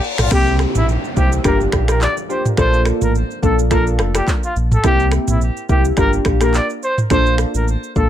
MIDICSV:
0, 0, Header, 1, 7, 480
1, 0, Start_track
1, 0, Tempo, 566038
1, 268, Time_signature, 4, 2, 24, 8
1, 6864, End_track
2, 0, Start_track
2, 0, Title_t, "Trumpet"
2, 0, Program_c, 0, 56
2, 176, Note_on_c, 0, 65, 76
2, 261, Note_off_c, 0, 65, 0
2, 283, Note_on_c, 0, 67, 109
2, 481, Note_off_c, 0, 67, 0
2, 652, Note_on_c, 0, 64, 89
2, 739, Note_off_c, 0, 64, 0
2, 1001, Note_on_c, 0, 67, 91
2, 1108, Note_off_c, 0, 67, 0
2, 1245, Note_on_c, 0, 70, 89
2, 1350, Note_off_c, 0, 70, 0
2, 1614, Note_on_c, 0, 70, 79
2, 1700, Note_off_c, 0, 70, 0
2, 1722, Note_on_c, 0, 74, 93
2, 1828, Note_off_c, 0, 74, 0
2, 1962, Note_on_c, 0, 72, 78
2, 2068, Note_off_c, 0, 72, 0
2, 2202, Note_on_c, 0, 72, 102
2, 2400, Note_off_c, 0, 72, 0
2, 2573, Note_on_c, 0, 70, 77
2, 2660, Note_off_c, 0, 70, 0
2, 2921, Note_on_c, 0, 69, 85
2, 3028, Note_off_c, 0, 69, 0
2, 3162, Note_on_c, 0, 70, 86
2, 3269, Note_off_c, 0, 70, 0
2, 3535, Note_on_c, 0, 67, 83
2, 3621, Note_off_c, 0, 67, 0
2, 3776, Note_on_c, 0, 65, 80
2, 3861, Note_off_c, 0, 65, 0
2, 4017, Note_on_c, 0, 69, 76
2, 4102, Note_off_c, 0, 69, 0
2, 4122, Note_on_c, 0, 67, 107
2, 4320, Note_off_c, 0, 67, 0
2, 4498, Note_on_c, 0, 64, 77
2, 4582, Note_off_c, 0, 64, 0
2, 4844, Note_on_c, 0, 67, 88
2, 4949, Note_off_c, 0, 67, 0
2, 5082, Note_on_c, 0, 70, 95
2, 5189, Note_off_c, 0, 70, 0
2, 5454, Note_on_c, 0, 70, 80
2, 5540, Note_off_c, 0, 70, 0
2, 5562, Note_on_c, 0, 74, 84
2, 5669, Note_off_c, 0, 74, 0
2, 5801, Note_on_c, 0, 72, 91
2, 5908, Note_off_c, 0, 72, 0
2, 6042, Note_on_c, 0, 72, 116
2, 6240, Note_off_c, 0, 72, 0
2, 6414, Note_on_c, 0, 70, 80
2, 6500, Note_off_c, 0, 70, 0
2, 6760, Note_on_c, 0, 69, 79
2, 6864, Note_off_c, 0, 69, 0
2, 6864, End_track
3, 0, Start_track
3, 0, Title_t, "Synth keys"
3, 0, Program_c, 1, 88
3, 265, Note_on_c, 1, 58, 97
3, 266, Note_on_c, 1, 60, 87
3, 269, Note_on_c, 1, 64, 84
3, 271, Note_on_c, 1, 67, 105
3, 712, Note_off_c, 1, 58, 0
3, 713, Note_off_c, 1, 60, 0
3, 714, Note_off_c, 1, 64, 0
3, 715, Note_off_c, 1, 67, 0
3, 986, Note_on_c, 1, 58, 76
3, 988, Note_on_c, 1, 60, 72
3, 988, Note_on_c, 1, 64, 72
3, 990, Note_on_c, 1, 67, 88
3, 1156, Note_off_c, 1, 58, 0
3, 1157, Note_off_c, 1, 60, 0
3, 1157, Note_off_c, 1, 64, 0
3, 1158, Note_off_c, 1, 67, 0
3, 1224, Note_on_c, 1, 58, 90
3, 1226, Note_on_c, 1, 62, 85
3, 1229, Note_on_c, 1, 65, 85
3, 1231, Note_on_c, 1, 67, 103
3, 1567, Note_off_c, 1, 58, 0
3, 1567, Note_off_c, 1, 62, 0
3, 1569, Note_off_c, 1, 65, 0
3, 1570, Note_off_c, 1, 67, 0
3, 1598, Note_on_c, 1, 58, 78
3, 1599, Note_on_c, 1, 62, 71
3, 1600, Note_on_c, 1, 65, 74
3, 1602, Note_on_c, 1, 67, 90
3, 1752, Note_off_c, 1, 58, 0
3, 1753, Note_off_c, 1, 62, 0
3, 1753, Note_off_c, 1, 65, 0
3, 1755, Note_off_c, 1, 67, 0
3, 1944, Note_on_c, 1, 58, 75
3, 1946, Note_on_c, 1, 62, 69
3, 1948, Note_on_c, 1, 65, 69
3, 1950, Note_on_c, 1, 67, 85
3, 2115, Note_off_c, 1, 58, 0
3, 2116, Note_off_c, 1, 62, 0
3, 2117, Note_off_c, 1, 65, 0
3, 2118, Note_off_c, 1, 67, 0
3, 2184, Note_on_c, 1, 58, 95
3, 2186, Note_on_c, 1, 62, 87
3, 2188, Note_on_c, 1, 65, 91
3, 2190, Note_on_c, 1, 69, 103
3, 2632, Note_off_c, 1, 58, 0
3, 2633, Note_off_c, 1, 62, 0
3, 2633, Note_off_c, 1, 65, 0
3, 2634, Note_off_c, 1, 69, 0
3, 2904, Note_on_c, 1, 58, 81
3, 2906, Note_on_c, 1, 62, 75
3, 2907, Note_on_c, 1, 65, 72
3, 2910, Note_on_c, 1, 69, 89
3, 3075, Note_off_c, 1, 58, 0
3, 3076, Note_off_c, 1, 62, 0
3, 3077, Note_off_c, 1, 65, 0
3, 3078, Note_off_c, 1, 69, 0
3, 3144, Note_on_c, 1, 58, 94
3, 3145, Note_on_c, 1, 62, 86
3, 3147, Note_on_c, 1, 65, 86
3, 3149, Note_on_c, 1, 69, 106
3, 3487, Note_off_c, 1, 58, 0
3, 3487, Note_off_c, 1, 62, 0
3, 3488, Note_off_c, 1, 65, 0
3, 3489, Note_off_c, 1, 69, 0
3, 3515, Note_on_c, 1, 58, 76
3, 3518, Note_on_c, 1, 62, 73
3, 3518, Note_on_c, 1, 65, 70
3, 3521, Note_on_c, 1, 69, 86
3, 3671, Note_off_c, 1, 58, 0
3, 3672, Note_off_c, 1, 62, 0
3, 3672, Note_off_c, 1, 65, 0
3, 3674, Note_off_c, 1, 69, 0
3, 4106, Note_on_c, 1, 58, 98
3, 4106, Note_on_c, 1, 60, 90
3, 4109, Note_on_c, 1, 64, 87
3, 4111, Note_on_c, 1, 67, 102
3, 4552, Note_off_c, 1, 58, 0
3, 4553, Note_off_c, 1, 60, 0
3, 4554, Note_off_c, 1, 64, 0
3, 4555, Note_off_c, 1, 67, 0
3, 4827, Note_on_c, 1, 58, 80
3, 4828, Note_on_c, 1, 60, 72
3, 4830, Note_on_c, 1, 64, 73
3, 4832, Note_on_c, 1, 67, 89
3, 4996, Note_off_c, 1, 58, 0
3, 4997, Note_off_c, 1, 60, 0
3, 4998, Note_off_c, 1, 64, 0
3, 4999, Note_off_c, 1, 67, 0
3, 5065, Note_on_c, 1, 58, 93
3, 5067, Note_on_c, 1, 62, 89
3, 5069, Note_on_c, 1, 65, 86
3, 5071, Note_on_c, 1, 67, 99
3, 5407, Note_off_c, 1, 58, 0
3, 5408, Note_off_c, 1, 62, 0
3, 5409, Note_off_c, 1, 65, 0
3, 5410, Note_off_c, 1, 67, 0
3, 5438, Note_on_c, 1, 58, 77
3, 5439, Note_on_c, 1, 62, 72
3, 5442, Note_on_c, 1, 65, 74
3, 5443, Note_on_c, 1, 67, 92
3, 5592, Note_off_c, 1, 58, 0
3, 5593, Note_off_c, 1, 62, 0
3, 5594, Note_off_c, 1, 65, 0
3, 5595, Note_off_c, 1, 67, 0
3, 6025, Note_on_c, 1, 58, 95
3, 6029, Note_on_c, 1, 62, 88
3, 6029, Note_on_c, 1, 65, 88
3, 6031, Note_on_c, 1, 69, 100
3, 6472, Note_off_c, 1, 58, 0
3, 6474, Note_off_c, 1, 62, 0
3, 6474, Note_off_c, 1, 65, 0
3, 6475, Note_off_c, 1, 69, 0
3, 6748, Note_on_c, 1, 58, 76
3, 6749, Note_on_c, 1, 62, 70
3, 6751, Note_on_c, 1, 65, 73
3, 6752, Note_on_c, 1, 69, 85
3, 6864, Note_off_c, 1, 58, 0
3, 6864, Note_off_c, 1, 62, 0
3, 6864, Note_off_c, 1, 65, 0
3, 6864, Note_off_c, 1, 69, 0
3, 6864, End_track
4, 0, Start_track
4, 0, Title_t, "Sub bass"
4, 0, Program_c, 2, 38
4, 161, Note_on_c, 2, 34, 100
4, 245, Note_off_c, 2, 34, 0
4, 269, Note_on_c, 2, 36, 99
4, 562, Note_off_c, 2, 36, 0
4, 641, Note_on_c, 2, 34, 88
4, 830, Note_off_c, 2, 34, 0
4, 991, Note_on_c, 2, 36, 94
4, 1179, Note_off_c, 2, 36, 0
4, 1230, Note_on_c, 2, 31, 121
4, 1418, Note_off_c, 2, 31, 0
4, 1469, Note_on_c, 2, 34, 94
4, 1762, Note_off_c, 2, 34, 0
4, 2189, Note_on_c, 2, 34, 101
4, 2481, Note_off_c, 2, 34, 0
4, 2561, Note_on_c, 2, 33, 95
4, 2750, Note_off_c, 2, 33, 0
4, 2909, Note_on_c, 2, 34, 96
4, 3388, Note_on_c, 2, 29, 92
4, 3400, Note_off_c, 2, 34, 0
4, 3577, Note_off_c, 2, 29, 0
4, 3869, Note_on_c, 2, 34, 101
4, 4058, Note_off_c, 2, 34, 0
4, 4107, Note_on_c, 2, 36, 106
4, 4401, Note_off_c, 2, 36, 0
4, 4479, Note_on_c, 2, 34, 96
4, 4669, Note_off_c, 2, 34, 0
4, 4830, Note_on_c, 2, 36, 90
4, 5018, Note_off_c, 2, 36, 0
4, 5068, Note_on_c, 2, 31, 101
4, 5257, Note_off_c, 2, 31, 0
4, 5308, Note_on_c, 2, 34, 85
4, 5601, Note_off_c, 2, 34, 0
4, 6028, Note_on_c, 2, 34, 100
4, 6321, Note_off_c, 2, 34, 0
4, 6400, Note_on_c, 2, 33, 100
4, 6589, Note_off_c, 2, 33, 0
4, 6751, Note_on_c, 2, 34, 89
4, 6864, Note_off_c, 2, 34, 0
4, 6864, End_track
5, 0, Start_track
5, 0, Title_t, "Downlifter"
5, 0, Program_c, 3, 103
5, 269, Note_on_c, 3, 60, 87
5, 4109, Note_off_c, 3, 60, 0
5, 6864, End_track
6, 0, Start_track
6, 0, Title_t, "Reverse cymbal"
6, 0, Program_c, 4, 119
6, 0, Note_on_c, 4, 60, 92
6, 268, Note_off_c, 4, 60, 0
6, 6864, End_track
7, 0, Start_track
7, 0, Title_t, "Drums"
7, 30, Note_on_c, 9, 82, 50
7, 114, Note_off_c, 9, 82, 0
7, 155, Note_on_c, 9, 26, 82
7, 160, Note_on_c, 9, 37, 109
7, 162, Note_on_c, 9, 45, 97
7, 162, Note_on_c, 9, 82, 84
7, 240, Note_off_c, 9, 26, 0
7, 245, Note_off_c, 9, 37, 0
7, 247, Note_off_c, 9, 45, 0
7, 247, Note_off_c, 9, 82, 0
7, 264, Note_on_c, 9, 26, 78
7, 269, Note_on_c, 9, 36, 115
7, 269, Note_on_c, 9, 37, 93
7, 269, Note_on_c, 9, 49, 105
7, 269, Note_on_c, 9, 82, 79
7, 349, Note_off_c, 9, 26, 0
7, 354, Note_off_c, 9, 36, 0
7, 354, Note_off_c, 9, 37, 0
7, 354, Note_off_c, 9, 49, 0
7, 354, Note_off_c, 9, 82, 0
7, 400, Note_on_c, 9, 82, 47
7, 484, Note_off_c, 9, 82, 0
7, 501, Note_on_c, 9, 26, 68
7, 507, Note_on_c, 9, 37, 88
7, 509, Note_on_c, 9, 82, 51
7, 586, Note_off_c, 9, 26, 0
7, 591, Note_off_c, 9, 37, 0
7, 594, Note_off_c, 9, 82, 0
7, 637, Note_on_c, 9, 82, 105
7, 638, Note_on_c, 9, 45, 91
7, 722, Note_off_c, 9, 82, 0
7, 723, Note_off_c, 9, 45, 0
7, 752, Note_on_c, 9, 82, 59
7, 837, Note_off_c, 9, 82, 0
7, 885, Note_on_c, 9, 82, 50
7, 970, Note_off_c, 9, 82, 0
7, 989, Note_on_c, 9, 82, 59
7, 991, Note_on_c, 9, 36, 97
7, 1074, Note_off_c, 9, 82, 0
7, 1076, Note_off_c, 9, 36, 0
7, 1121, Note_on_c, 9, 82, 102
7, 1206, Note_off_c, 9, 82, 0
7, 1224, Note_on_c, 9, 26, 80
7, 1225, Note_on_c, 9, 82, 71
7, 1230, Note_on_c, 9, 36, 94
7, 1230, Note_on_c, 9, 37, 95
7, 1309, Note_off_c, 9, 26, 0
7, 1310, Note_off_c, 9, 82, 0
7, 1314, Note_off_c, 9, 37, 0
7, 1315, Note_off_c, 9, 36, 0
7, 1361, Note_on_c, 9, 82, 54
7, 1446, Note_off_c, 9, 82, 0
7, 1462, Note_on_c, 9, 26, 85
7, 1467, Note_on_c, 9, 37, 101
7, 1467, Note_on_c, 9, 82, 46
7, 1469, Note_on_c, 9, 36, 92
7, 1547, Note_off_c, 9, 26, 0
7, 1552, Note_off_c, 9, 37, 0
7, 1552, Note_off_c, 9, 82, 0
7, 1553, Note_off_c, 9, 36, 0
7, 1596, Note_on_c, 9, 26, 79
7, 1599, Note_on_c, 9, 82, 99
7, 1601, Note_on_c, 9, 37, 98
7, 1681, Note_off_c, 9, 26, 0
7, 1684, Note_off_c, 9, 82, 0
7, 1686, Note_off_c, 9, 37, 0
7, 1708, Note_on_c, 9, 39, 93
7, 1708, Note_on_c, 9, 82, 76
7, 1792, Note_off_c, 9, 39, 0
7, 1792, Note_off_c, 9, 82, 0
7, 1841, Note_on_c, 9, 82, 57
7, 1926, Note_off_c, 9, 82, 0
7, 1951, Note_on_c, 9, 82, 49
7, 2036, Note_off_c, 9, 82, 0
7, 2082, Note_on_c, 9, 45, 99
7, 2083, Note_on_c, 9, 82, 82
7, 2167, Note_off_c, 9, 45, 0
7, 2168, Note_off_c, 9, 82, 0
7, 2183, Note_on_c, 9, 26, 73
7, 2188, Note_on_c, 9, 36, 120
7, 2188, Note_on_c, 9, 37, 92
7, 2189, Note_on_c, 9, 82, 81
7, 2268, Note_off_c, 9, 26, 0
7, 2273, Note_off_c, 9, 36, 0
7, 2273, Note_off_c, 9, 37, 0
7, 2273, Note_off_c, 9, 82, 0
7, 2319, Note_on_c, 9, 82, 48
7, 2404, Note_off_c, 9, 82, 0
7, 2421, Note_on_c, 9, 26, 73
7, 2426, Note_on_c, 9, 37, 88
7, 2429, Note_on_c, 9, 82, 55
7, 2506, Note_off_c, 9, 26, 0
7, 2511, Note_off_c, 9, 37, 0
7, 2514, Note_off_c, 9, 82, 0
7, 2556, Note_on_c, 9, 82, 102
7, 2558, Note_on_c, 9, 45, 93
7, 2641, Note_off_c, 9, 82, 0
7, 2643, Note_off_c, 9, 45, 0
7, 2673, Note_on_c, 9, 82, 60
7, 2757, Note_off_c, 9, 82, 0
7, 2805, Note_on_c, 9, 82, 48
7, 2889, Note_off_c, 9, 82, 0
7, 2908, Note_on_c, 9, 82, 59
7, 2910, Note_on_c, 9, 36, 104
7, 2993, Note_off_c, 9, 82, 0
7, 2995, Note_off_c, 9, 36, 0
7, 3043, Note_on_c, 9, 82, 101
7, 3128, Note_off_c, 9, 82, 0
7, 3145, Note_on_c, 9, 26, 77
7, 3146, Note_on_c, 9, 82, 68
7, 3149, Note_on_c, 9, 36, 95
7, 3150, Note_on_c, 9, 37, 98
7, 3230, Note_off_c, 9, 26, 0
7, 3230, Note_off_c, 9, 82, 0
7, 3234, Note_off_c, 9, 36, 0
7, 3235, Note_off_c, 9, 37, 0
7, 3281, Note_on_c, 9, 82, 55
7, 3366, Note_off_c, 9, 82, 0
7, 3382, Note_on_c, 9, 26, 81
7, 3387, Note_on_c, 9, 37, 103
7, 3387, Note_on_c, 9, 82, 46
7, 3467, Note_off_c, 9, 26, 0
7, 3472, Note_off_c, 9, 37, 0
7, 3472, Note_off_c, 9, 82, 0
7, 3516, Note_on_c, 9, 26, 78
7, 3520, Note_on_c, 9, 82, 96
7, 3521, Note_on_c, 9, 37, 99
7, 3601, Note_off_c, 9, 26, 0
7, 3605, Note_off_c, 9, 82, 0
7, 3606, Note_off_c, 9, 37, 0
7, 3627, Note_on_c, 9, 36, 93
7, 3628, Note_on_c, 9, 39, 94
7, 3628, Note_on_c, 9, 82, 79
7, 3712, Note_off_c, 9, 36, 0
7, 3713, Note_off_c, 9, 39, 0
7, 3713, Note_off_c, 9, 82, 0
7, 3759, Note_on_c, 9, 82, 55
7, 3844, Note_off_c, 9, 82, 0
7, 3868, Note_on_c, 9, 82, 53
7, 3953, Note_off_c, 9, 82, 0
7, 3999, Note_on_c, 9, 45, 96
7, 4000, Note_on_c, 9, 82, 83
7, 4084, Note_off_c, 9, 45, 0
7, 4085, Note_off_c, 9, 82, 0
7, 4101, Note_on_c, 9, 26, 75
7, 4106, Note_on_c, 9, 37, 98
7, 4107, Note_on_c, 9, 36, 115
7, 4107, Note_on_c, 9, 82, 80
7, 4186, Note_off_c, 9, 26, 0
7, 4191, Note_off_c, 9, 37, 0
7, 4192, Note_off_c, 9, 36, 0
7, 4192, Note_off_c, 9, 82, 0
7, 4237, Note_on_c, 9, 82, 49
7, 4322, Note_off_c, 9, 82, 0
7, 4338, Note_on_c, 9, 26, 73
7, 4343, Note_on_c, 9, 37, 88
7, 4346, Note_on_c, 9, 82, 53
7, 4423, Note_off_c, 9, 26, 0
7, 4428, Note_off_c, 9, 37, 0
7, 4430, Note_off_c, 9, 82, 0
7, 4474, Note_on_c, 9, 82, 108
7, 4475, Note_on_c, 9, 45, 93
7, 4559, Note_off_c, 9, 82, 0
7, 4560, Note_off_c, 9, 45, 0
7, 4590, Note_on_c, 9, 82, 57
7, 4675, Note_off_c, 9, 82, 0
7, 4722, Note_on_c, 9, 82, 51
7, 4807, Note_off_c, 9, 82, 0
7, 4825, Note_on_c, 9, 82, 60
7, 4829, Note_on_c, 9, 36, 98
7, 4910, Note_off_c, 9, 82, 0
7, 4914, Note_off_c, 9, 36, 0
7, 4959, Note_on_c, 9, 82, 104
7, 5044, Note_off_c, 9, 82, 0
7, 5061, Note_on_c, 9, 26, 79
7, 5062, Note_on_c, 9, 82, 70
7, 5066, Note_on_c, 9, 37, 92
7, 5068, Note_on_c, 9, 36, 101
7, 5146, Note_off_c, 9, 26, 0
7, 5146, Note_off_c, 9, 82, 0
7, 5151, Note_off_c, 9, 37, 0
7, 5153, Note_off_c, 9, 36, 0
7, 5199, Note_on_c, 9, 82, 52
7, 5284, Note_off_c, 9, 82, 0
7, 5299, Note_on_c, 9, 26, 78
7, 5304, Note_on_c, 9, 37, 103
7, 5304, Note_on_c, 9, 82, 47
7, 5307, Note_on_c, 9, 36, 93
7, 5384, Note_off_c, 9, 26, 0
7, 5389, Note_off_c, 9, 37, 0
7, 5389, Note_off_c, 9, 82, 0
7, 5392, Note_off_c, 9, 36, 0
7, 5433, Note_on_c, 9, 26, 80
7, 5436, Note_on_c, 9, 82, 94
7, 5438, Note_on_c, 9, 37, 97
7, 5517, Note_off_c, 9, 26, 0
7, 5521, Note_off_c, 9, 82, 0
7, 5523, Note_off_c, 9, 37, 0
7, 5547, Note_on_c, 9, 39, 94
7, 5547, Note_on_c, 9, 82, 80
7, 5631, Note_off_c, 9, 39, 0
7, 5631, Note_off_c, 9, 82, 0
7, 5679, Note_on_c, 9, 82, 55
7, 5764, Note_off_c, 9, 82, 0
7, 5790, Note_on_c, 9, 82, 52
7, 5874, Note_off_c, 9, 82, 0
7, 5920, Note_on_c, 9, 45, 97
7, 5920, Note_on_c, 9, 82, 80
7, 6005, Note_off_c, 9, 45, 0
7, 6005, Note_off_c, 9, 82, 0
7, 6023, Note_on_c, 9, 26, 73
7, 6028, Note_on_c, 9, 36, 112
7, 6028, Note_on_c, 9, 37, 94
7, 6029, Note_on_c, 9, 82, 77
7, 6108, Note_off_c, 9, 26, 0
7, 6113, Note_off_c, 9, 36, 0
7, 6113, Note_off_c, 9, 37, 0
7, 6113, Note_off_c, 9, 82, 0
7, 6159, Note_on_c, 9, 82, 50
7, 6244, Note_off_c, 9, 82, 0
7, 6260, Note_on_c, 9, 26, 73
7, 6265, Note_on_c, 9, 37, 87
7, 6268, Note_on_c, 9, 82, 52
7, 6345, Note_off_c, 9, 26, 0
7, 6350, Note_off_c, 9, 37, 0
7, 6353, Note_off_c, 9, 82, 0
7, 6397, Note_on_c, 9, 82, 107
7, 6482, Note_off_c, 9, 82, 0
7, 6512, Note_on_c, 9, 82, 57
7, 6596, Note_off_c, 9, 82, 0
7, 6644, Note_on_c, 9, 82, 50
7, 6729, Note_off_c, 9, 82, 0
7, 6748, Note_on_c, 9, 82, 61
7, 6750, Note_on_c, 9, 36, 101
7, 6833, Note_off_c, 9, 82, 0
7, 6835, Note_off_c, 9, 36, 0
7, 6864, End_track
0, 0, End_of_file